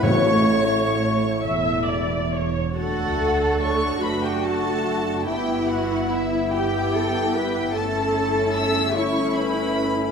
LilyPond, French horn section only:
\new Staff \with { instrumentName = "French horn section" } { \time 6/8 \key d \major \tempo 4. = 48 <a e'>2~ <a e'>8 r8 | <a d'>2. | <b e'>2. | <a cis'>2. | }